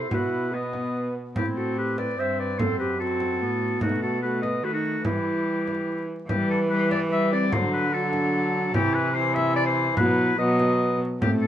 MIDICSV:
0, 0, Header, 1, 6, 480
1, 0, Start_track
1, 0, Key_signature, 1, "minor"
1, 0, Tempo, 410959
1, 137, Time_signature, 3, 2, 24, 8
1, 13398, End_track
2, 0, Start_track
2, 0, Title_t, "Oboe"
2, 0, Program_c, 0, 68
2, 0, Note_on_c, 0, 72, 80
2, 153, Note_on_c, 0, 71, 71
2, 171, Note_off_c, 0, 72, 0
2, 630, Note_on_c, 0, 75, 75
2, 648, Note_off_c, 0, 71, 0
2, 1350, Note_off_c, 0, 75, 0
2, 1598, Note_on_c, 0, 67, 79
2, 1704, Note_off_c, 0, 67, 0
2, 1835, Note_on_c, 0, 69, 54
2, 2067, Note_off_c, 0, 69, 0
2, 2081, Note_on_c, 0, 71, 72
2, 2310, Note_off_c, 0, 71, 0
2, 2315, Note_on_c, 0, 74, 74
2, 2560, Note_on_c, 0, 76, 84
2, 2578, Note_off_c, 0, 74, 0
2, 2793, Note_off_c, 0, 76, 0
2, 2801, Note_on_c, 0, 74, 80
2, 3024, Note_on_c, 0, 72, 90
2, 3042, Note_off_c, 0, 74, 0
2, 3252, Note_off_c, 0, 72, 0
2, 3259, Note_on_c, 0, 71, 70
2, 3495, Note_off_c, 0, 71, 0
2, 3502, Note_on_c, 0, 69, 80
2, 4437, Note_off_c, 0, 69, 0
2, 4458, Note_on_c, 0, 66, 74
2, 4690, Note_off_c, 0, 66, 0
2, 4698, Note_on_c, 0, 69, 73
2, 4924, Note_off_c, 0, 69, 0
2, 4931, Note_on_c, 0, 71, 82
2, 5154, Note_off_c, 0, 71, 0
2, 5161, Note_on_c, 0, 75, 83
2, 5420, Note_on_c, 0, 71, 85
2, 5437, Note_off_c, 0, 75, 0
2, 5522, Note_off_c, 0, 71, 0
2, 5529, Note_on_c, 0, 66, 75
2, 5885, Note_off_c, 0, 66, 0
2, 5894, Note_on_c, 0, 67, 71
2, 7079, Note_off_c, 0, 67, 0
2, 7349, Note_on_c, 0, 67, 90
2, 7571, Note_off_c, 0, 67, 0
2, 7595, Note_on_c, 0, 69, 86
2, 7701, Note_off_c, 0, 69, 0
2, 7824, Note_on_c, 0, 71, 92
2, 8059, Note_off_c, 0, 71, 0
2, 8073, Note_on_c, 0, 74, 96
2, 8179, Note_off_c, 0, 74, 0
2, 8314, Note_on_c, 0, 76, 109
2, 8543, Note_off_c, 0, 76, 0
2, 8554, Note_on_c, 0, 74, 108
2, 8796, Note_on_c, 0, 72, 101
2, 8814, Note_off_c, 0, 74, 0
2, 9027, Note_off_c, 0, 72, 0
2, 9034, Note_on_c, 0, 71, 100
2, 9269, Note_on_c, 0, 69, 105
2, 9287, Note_off_c, 0, 71, 0
2, 10207, Note_off_c, 0, 69, 0
2, 10214, Note_on_c, 0, 67, 120
2, 10442, Note_on_c, 0, 71, 106
2, 10460, Note_off_c, 0, 67, 0
2, 10672, Note_on_c, 0, 72, 109
2, 10690, Note_off_c, 0, 71, 0
2, 10914, Note_on_c, 0, 76, 114
2, 10932, Note_off_c, 0, 72, 0
2, 11160, Note_off_c, 0, 76, 0
2, 11166, Note_on_c, 0, 74, 127
2, 11276, Note_off_c, 0, 74, 0
2, 11283, Note_on_c, 0, 72, 109
2, 11637, Note_off_c, 0, 72, 0
2, 11645, Note_on_c, 0, 71, 108
2, 12119, Note_off_c, 0, 71, 0
2, 12128, Note_on_c, 0, 75, 105
2, 12840, Note_off_c, 0, 75, 0
2, 13101, Note_on_c, 0, 67, 98
2, 13208, Note_off_c, 0, 67, 0
2, 13331, Note_on_c, 0, 69, 81
2, 13398, Note_off_c, 0, 69, 0
2, 13398, End_track
3, 0, Start_track
3, 0, Title_t, "Recorder"
3, 0, Program_c, 1, 74
3, 0, Note_on_c, 1, 69, 64
3, 118, Note_off_c, 1, 69, 0
3, 125, Note_on_c, 1, 66, 80
3, 605, Note_on_c, 1, 71, 66
3, 623, Note_off_c, 1, 66, 0
3, 1338, Note_off_c, 1, 71, 0
3, 1589, Note_on_c, 1, 64, 71
3, 1837, Note_on_c, 1, 66, 59
3, 1854, Note_off_c, 1, 64, 0
3, 2067, Note_on_c, 1, 67, 77
3, 2084, Note_off_c, 1, 66, 0
3, 2315, Note_on_c, 1, 71, 74
3, 2332, Note_off_c, 1, 67, 0
3, 2538, Note_off_c, 1, 71, 0
3, 2545, Note_on_c, 1, 72, 67
3, 2792, Note_on_c, 1, 71, 73
3, 2809, Note_off_c, 1, 72, 0
3, 3041, Note_on_c, 1, 69, 86
3, 3058, Note_off_c, 1, 71, 0
3, 3259, Note_off_c, 1, 69, 0
3, 3266, Note_on_c, 1, 67, 70
3, 3511, Note_on_c, 1, 66, 84
3, 3529, Note_off_c, 1, 67, 0
3, 4460, Note_off_c, 1, 66, 0
3, 4469, Note_on_c, 1, 63, 76
3, 4690, Note_off_c, 1, 63, 0
3, 4697, Note_on_c, 1, 66, 60
3, 4928, Note_off_c, 1, 66, 0
3, 4946, Note_on_c, 1, 66, 74
3, 5173, Note_off_c, 1, 66, 0
3, 5185, Note_on_c, 1, 71, 67
3, 5420, Note_on_c, 1, 66, 73
3, 5438, Note_off_c, 1, 71, 0
3, 5523, Note_off_c, 1, 66, 0
3, 5530, Note_on_c, 1, 63, 60
3, 5886, Note_off_c, 1, 63, 0
3, 5891, Note_on_c, 1, 64, 63
3, 7078, Note_off_c, 1, 64, 0
3, 7357, Note_on_c, 1, 71, 75
3, 7798, Note_off_c, 1, 71, 0
3, 7840, Note_on_c, 1, 71, 76
3, 8295, Note_off_c, 1, 71, 0
3, 8302, Note_on_c, 1, 71, 75
3, 8561, Note_on_c, 1, 60, 69
3, 8579, Note_off_c, 1, 71, 0
3, 8785, Note_on_c, 1, 62, 77
3, 8802, Note_off_c, 1, 60, 0
3, 9260, Note_off_c, 1, 62, 0
3, 9279, Note_on_c, 1, 62, 83
3, 10203, Note_off_c, 1, 62, 0
3, 10215, Note_on_c, 1, 64, 93
3, 10681, Note_off_c, 1, 64, 0
3, 10700, Note_on_c, 1, 64, 92
3, 11633, Note_off_c, 1, 64, 0
3, 11657, Note_on_c, 1, 64, 83
3, 12126, Note_on_c, 1, 71, 85
3, 12143, Note_off_c, 1, 64, 0
3, 12853, Note_off_c, 1, 71, 0
3, 13099, Note_on_c, 1, 60, 70
3, 13398, Note_off_c, 1, 60, 0
3, 13398, End_track
4, 0, Start_track
4, 0, Title_t, "Viola"
4, 0, Program_c, 2, 41
4, 0, Note_on_c, 2, 64, 57
4, 118, Note_off_c, 2, 64, 0
4, 136, Note_on_c, 2, 64, 62
4, 620, Note_on_c, 2, 59, 52
4, 637, Note_off_c, 2, 64, 0
4, 1352, Note_off_c, 2, 59, 0
4, 1600, Note_on_c, 2, 60, 60
4, 2507, Note_off_c, 2, 60, 0
4, 2560, Note_on_c, 2, 60, 51
4, 3021, Note_off_c, 2, 60, 0
4, 3033, Note_on_c, 2, 60, 62
4, 3497, Note_off_c, 2, 60, 0
4, 3514, Note_on_c, 2, 60, 60
4, 3984, Note_on_c, 2, 59, 53
4, 4002, Note_off_c, 2, 60, 0
4, 4463, Note_on_c, 2, 57, 58
4, 4480, Note_off_c, 2, 59, 0
4, 4935, Note_off_c, 2, 57, 0
4, 4943, Note_on_c, 2, 57, 59
4, 5407, Note_off_c, 2, 57, 0
4, 5414, Note_on_c, 2, 57, 51
4, 5900, Note_on_c, 2, 55, 54
4, 5917, Note_off_c, 2, 57, 0
4, 7113, Note_off_c, 2, 55, 0
4, 7352, Note_on_c, 2, 55, 71
4, 7796, Note_off_c, 2, 55, 0
4, 7833, Note_on_c, 2, 55, 64
4, 8298, Note_off_c, 2, 55, 0
4, 8311, Note_on_c, 2, 55, 65
4, 8781, Note_on_c, 2, 54, 76
4, 8799, Note_off_c, 2, 55, 0
4, 9251, Note_off_c, 2, 54, 0
4, 9258, Note_on_c, 2, 54, 80
4, 10222, Note_on_c, 2, 52, 78
4, 10239, Note_off_c, 2, 54, 0
4, 10690, Note_off_c, 2, 52, 0
4, 10697, Note_on_c, 2, 52, 77
4, 11648, Note_on_c, 2, 54, 84
4, 11666, Note_off_c, 2, 52, 0
4, 12119, Note_off_c, 2, 54, 0
4, 12126, Note_on_c, 2, 54, 76
4, 12845, Note_off_c, 2, 54, 0
4, 13099, Note_on_c, 2, 57, 80
4, 13398, Note_off_c, 2, 57, 0
4, 13398, End_track
5, 0, Start_track
5, 0, Title_t, "Cello"
5, 0, Program_c, 3, 42
5, 138, Note_on_c, 3, 47, 61
5, 1327, Note_off_c, 3, 47, 0
5, 1591, Note_on_c, 3, 45, 53
5, 2502, Note_off_c, 3, 45, 0
5, 2550, Note_on_c, 3, 43, 62
5, 3032, Note_on_c, 3, 42, 59
5, 3050, Note_off_c, 3, 43, 0
5, 3984, Note_on_c, 3, 45, 61
5, 4002, Note_off_c, 3, 42, 0
5, 4450, Note_off_c, 3, 45, 0
5, 4457, Note_on_c, 3, 47, 63
5, 5404, Note_on_c, 3, 51, 58
5, 5421, Note_off_c, 3, 47, 0
5, 5881, Note_off_c, 3, 51, 0
5, 5888, Note_on_c, 3, 52, 54
5, 7083, Note_off_c, 3, 52, 0
5, 7347, Note_on_c, 3, 52, 77
5, 8735, Note_off_c, 3, 52, 0
5, 8787, Note_on_c, 3, 50, 78
5, 10185, Note_off_c, 3, 50, 0
5, 10213, Note_on_c, 3, 48, 86
5, 11618, Note_off_c, 3, 48, 0
5, 11649, Note_on_c, 3, 47, 84
5, 12121, Note_off_c, 3, 47, 0
5, 12131, Note_on_c, 3, 47, 91
5, 12848, Note_off_c, 3, 47, 0
5, 13101, Note_on_c, 3, 45, 73
5, 13398, Note_off_c, 3, 45, 0
5, 13398, End_track
6, 0, Start_track
6, 0, Title_t, "Frame drum"
6, 130, Note_on_c, 9, 64, 72
6, 247, Note_off_c, 9, 64, 0
6, 858, Note_on_c, 9, 64, 40
6, 975, Note_off_c, 9, 64, 0
6, 1586, Note_on_c, 9, 64, 71
6, 1703, Note_off_c, 9, 64, 0
6, 2314, Note_on_c, 9, 64, 44
6, 2430, Note_off_c, 9, 64, 0
6, 3030, Note_on_c, 9, 64, 77
6, 3147, Note_off_c, 9, 64, 0
6, 3741, Note_on_c, 9, 64, 42
6, 3858, Note_off_c, 9, 64, 0
6, 4451, Note_on_c, 9, 64, 75
6, 4568, Note_off_c, 9, 64, 0
6, 5178, Note_on_c, 9, 64, 44
6, 5295, Note_off_c, 9, 64, 0
6, 5894, Note_on_c, 9, 64, 71
6, 6011, Note_off_c, 9, 64, 0
6, 6628, Note_on_c, 9, 64, 42
6, 6745, Note_off_c, 9, 64, 0
6, 7350, Note_on_c, 9, 64, 75
6, 7467, Note_off_c, 9, 64, 0
6, 8074, Note_on_c, 9, 64, 48
6, 8191, Note_off_c, 9, 64, 0
6, 8789, Note_on_c, 9, 64, 86
6, 8906, Note_off_c, 9, 64, 0
6, 9496, Note_on_c, 9, 64, 47
6, 9613, Note_off_c, 9, 64, 0
6, 10211, Note_on_c, 9, 64, 87
6, 10328, Note_off_c, 9, 64, 0
6, 10932, Note_on_c, 9, 64, 52
6, 11049, Note_off_c, 9, 64, 0
6, 11644, Note_on_c, 9, 64, 82
6, 11760, Note_off_c, 9, 64, 0
6, 12375, Note_on_c, 9, 64, 49
6, 12491, Note_off_c, 9, 64, 0
6, 13102, Note_on_c, 9, 64, 87
6, 13218, Note_off_c, 9, 64, 0
6, 13398, End_track
0, 0, End_of_file